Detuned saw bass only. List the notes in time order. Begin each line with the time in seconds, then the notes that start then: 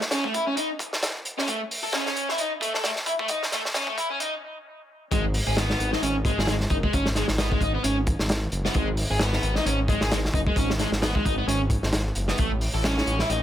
5.12 G#1
5.47 G#1
5.80 G#1
6.02 G#1
6.38 G#1
6.70 F#1
6.93 G#1
7.29 G#1
7.61 G#1
7.84 G#1
8.20 G#1
8.52 F#1
8.75 G#1
9.10 G#1
9.43 G#1
9.66 G#1
10.01 G#1
10.34 F#1
10.56 G#1
10.92 G#1
11.25 G#1
11.47 G#1
11.83 G#1
12.16 F#1
12.39 A1
12.74 A1
13.07 A1
13.30 A1